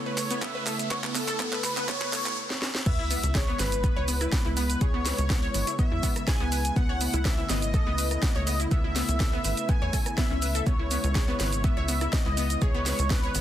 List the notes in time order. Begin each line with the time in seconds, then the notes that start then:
Already playing: C#3 A3 B3 E4 C#5, riser
0.06 B4
0.18 clap, open hi-hat, shaker
0.31 B3, closed hi-hat, shaker
0.42 B3 E5, kick, clap, closed hi-hat, shaker
0.55 B4
0.66 A4, clap, open hi-hat, shaker
0.79 closed hi-hat, shaker
0.91 B3 C#5, kick, clap, closed hi-hat, shaker
1.04 B3, clap
1.15 B3 A4, clap, open hi-hat, shaker
1.28 A4, clap, closed hi-hat, shaker
1.40 B3, kick, clap, closed hi-hat, shaker
1.52 B4, clap
1.64 B4, clap, open hi-hat, shaker
1.77 B3, clap, closed hi-hat, shaker
1.88 B3 C#5, kick, clap, closed hi-hat, shaker
2.01 B4, clap
2.13 A4, clap, open hi-hat, shaker
2.26 clap, closed hi-hat, shaker
2.50 snare
2.62 snare
2.75 snare
2.86 C#2 C#3 G#3 B3 E4 E5, kick, closed hi-hat, crash, sub drop, shaker
2.99 E4
3.11 B3, open hi-hat, shaker
3.23 C#2, closed hi-hat, shaker
3.35 G#4 C#5, kick, snare, closed hi-hat, shaker
3.48 B3
3.59 G#1 B4, snare, open hi-hat, shaker
3.72 closed hi-hat, shaker
3.84 B3, kick, closed hi-hat, shaker
3.96 C#2 C#5
4.08 B3, open hi-hat, shaker
4.21 E4, cross-stick, closed hi-hat, shaker
4.32 B3, kick, snare, closed hi-hat, shaker
4.45 C#2 E4
4.57 B3 B4, open hi-hat, shaker
4.70 closed hi-hat, shaker
4.81 C#2 G#4 C#5, kick, closed hi-hat, shaker
4.94 B3
5.06 B4, snare, open hi-hat, shaker
5.18 C#2, closed hi-hat, shaker
5.30 B3, kick, snare, closed hi-hat, shaker
5.43 C#5
5.54 G#1 B3, open hi-hat, shaker
5.67 E4, closed hi-hat, shaker
5.79 B3 E5, kick, closed hi-hat, shaker
5.92 E2 E4
6.03 B3, kick, open hi-hat, shaker
6.16 cross-stick, closed hi-hat, shaker
6.27 G#4 G#5, kick, snare, closed hi-hat, shaker
6.40 C#2 B3
6.52 B4, open hi-hat, shaker
6.65 closed hi-hat, shaker
6.76 C#2 A3 B3 F#5, kick, closed hi-hat, shaker
6.89 C#5
7.01 B3, open hi-hat, shaker
7.13 C#2 E4, closed hi-hat, shaker
7.25 B3 E5, kick, snare, closed hi-hat, shaker
7.38 E4
7.49 G#1 B3 D#5, snare, open hi-hat, shaker
7.62 closed hi-hat, shaker
7.74 A4, kick, closed hi-hat, shaker
7.87 C#2 B3
7.98 B4, open hi-hat, shaker
8.11 cross-stick, closed hi-hat, shaker
8.23 B3, kick, snare, closed hi-hat, shaker
8.35 C#2 C#5
8.47 B3 D#5, open hi-hat, shaker
8.60 E4, closed hi-hat, shaker
8.71 C#2 B3 E5, kick, closed hi-hat, shaker
8.84 E4
8.96 B3, snare, open hi-hat, shaker
9.08 C#2, closed hi-hat, shaker
9.20 A4, kick, snare, closed hi-hat, shaker
9.33 B3
9.44 G#1 B4, open hi-hat, shaker
9.57 closed hi-hat, shaker
9.69 B3 G#5, kick, closed hi-hat, shaker
9.82 E2 C#5
9.93 A4, kick, open hi-hat, shaker
10.06 cross-stick, closed hi-hat, shaker
10.17 B3 E5, kick, snare, closed hi-hat, shaker
10.31 C#2 C#4
10.42 B4, open hi-hat, shaker
10.55 A4, closed hi-hat, shaker
10.66 C#2 G#3 B3 C#5, kick, closed hi-hat, shaker
10.79 E4
10.91 B3, open hi-hat, shaker
11.04 C#2, closed hi-hat, shaker
11.15 G#4, kick, snare, closed hi-hat, shaker
11.28 B3
11.40 G#1 B4, snare, open hi-hat, shaker
11.53 closed hi-hat, shaker
11.64 B3 E5, kick, closed hi-hat, shaker
11.77 C#2 C#5
11.88 B3, open hi-hat, shaker
12.01 E4, cross-stick, closed hi-hat, shaker
12.12 B3 D#5, kick, snare, closed hi-hat, shaker
12.26 C#2 E4
12.37 B3, open hi-hat, shaker
12.50 closed hi-hat, shaker
12.61 C#2 G#4 C#5, kick, closed hi-hat, shaker
12.75 B3
12.86 B4, snare, open hi-hat, shaker
12.99 C#2, closed hi-hat, shaker
13.10 B3 B4, kick, snare, closed hi-hat, shaker
13.23 C#5
13.35 G#1 B3, open hi-hat, shaker